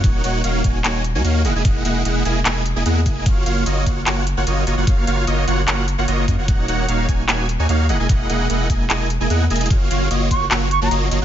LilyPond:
<<
  \new Staff \with { instrumentName = "Flute" } { \time 4/4 \key fis \major \tempo 4 = 149 r1 | r1 | r1 | r1 |
r1 | r1 | r4. cis'''16 r8. cis'''16 ais''16 r4 | }
  \new Staff \with { instrumentName = "Supersaw synth" } { \time 4/4 \key fis \major <ais dis' fis' cis'' fis''>8 <ais dis' fis' cis'' fis''>8 <ais dis' fis' cis'' eis''>8 <ais dis' fis' cis'' gis''>16 r16 <ais dis' fis' cis'' gis''>8 r16 <ais dis' fis' cis'' gis''>16 <ais dis' fis' cis'' eis''>8 <ais e' gis' dis'' fis''>16 <ais e' gis' dis'' gis''>16 | <ais e' gis' dis'' fis''>8 <ais e' gis' dis'' fis''>8 <ais e' gis' dis'' fis''>8 <ais e' gis' dis'' gis''>16 r16 <ais e' gis' dis'' gis''>8 r16 <ais e' gis' dis'' gis''>16 <ais e' gis' dis'' fis''>16 r16 <ais e' gis' dis'' gis''>8 | <ais eis' fis' cis'' eis''>8 <ais eis' fis' cis'' eis''>8 <ais eis' fis' cis'' dis''>8 <ais eis' fis' cis'' fis''>16 r16 <ais eis' fis' cis'' fis''>8 r16 <ais eis' fis' cis'' fis''>16 <ais eis' fis' cis'' dis''>8 <ais eis' fis' cis'' dis''>16 <ais eis' fis' cis'' fis''>16 | <ais eis' fis' cis'' eis''>8 <ais eis' fis' cis'' eis''>8 <ais eis' fis' cis'' dis''>8 <ais eis' fis' cis'' fis''>16 r16 <ais eis' fis' cis'' fis''>8 r16 <ais eis' fis' cis'' fis''>16 <ais eis' fis' cis'' dis''>8 <ais eis' fis' cis'' dis''>16 <ais eis' fis' cis'' fis''>16 |
<ais dis' fis' cis'' fis''>8 <ais dis' fis' cis'' fis''>8 <ais dis' fis' cis'' eis''>8 <ais dis' fis' cis'' gis''>16 r16 <ais dis' fis' cis'' gis''>8 r16 <ais dis' fis' cis'' gis''>16 <ais dis' fis' cis'' eis''>8 <ais e' gis' dis'' fis''>16 <ais e' gis' dis'' gis''>16 | <ais e' gis' dis'' fis''>8 <ais e' gis' dis'' fis''>8 <ais e' gis' dis'' fis''>8 <ais e' gis' dis'' gis''>16 r16 <ais e' gis' dis'' gis''>8 r16 <ais e' gis' dis'' gis''>16 <ais e' gis' dis'' fis''>16 r16 <ais e' gis' dis'' gis''>8 | <ais eis' fis' cis'' eis''>8 <ais eis' fis' cis'' eis''>8 <ais eis' fis' cis'' dis''>8 <ais eis' fis' cis'' fis''>16 r16 <ais eis' fis' cis'' fis''>8 r16 <ais eis' fis' cis'' fis''>16 <ais eis' fis' cis'' dis''>8 <ais eis' fis' cis'' dis''>16 <ais eis' fis' cis'' fis''>16 | }
  \new Staff \with { instrumentName = "Sub bass" } { \clef bass \time 4/4 \key fis \major dis,,8 dis,,8 dis,,8 dis,,8 dis,,8. dis,16 dis,8 e,,16 e,,16 | e,,8 e,,8 e,,8 e,,8 e,,8. e,,16 e,8 e,,8 | fis,,8 fis,,8 fis,,8 fis,,8 fis,,8. fis,,16 fis,,8 fis,,16 fis,,16 | fis,,8 fis,,8 fis,,8 fis,,8 fis,,8. fis,,16 fis,,8 fis,16 fis,,16 |
dis,,8 dis,,8 dis,,8 dis,,8 dis,,8. dis,16 dis,8 e,,16 e,,16 | e,,8 e,,8 e,,8 e,,8 e,,8. e,,16 e,8 e,,8 | fis,,8 fis,,8 fis,,8 fis,,8 fis,,8. fis,,16 fis,,8 fis,,16 fis,,16 | }
  \new DrumStaff \with { instrumentName = "Drums" } \drummode { \time 4/4 <hh bd>8 hh8 hh8 <hh bd>8 <hc hh>8 hh8 hh8 hh8 | <hh bd>8 hh8 hh8 hh8 <hc hh>8 hh8 hh8 <hh bd>8 | <hh bd>8 hh8 hh8 <hh bd>8 <hc hh>8 hh8 hh8 hh8 | <hh bd>8 hh8 hh8 hh8 <hc hh>8 hh8 hh8 <hh bd>8 |
<hh bd>8 hh8 hh8 <hh bd>8 <hc hh>8 hh8 hh8 hh8 | <hh bd>8 hh8 hh8 <hh bd>8 <hc hh>8 hh8 hh8 hh32 hh32 hh32 hh32 | <hh bd>8 hh8 hh8 <hh bd>8 <hc hh>8 hh8 hh8 hh8 | }
>>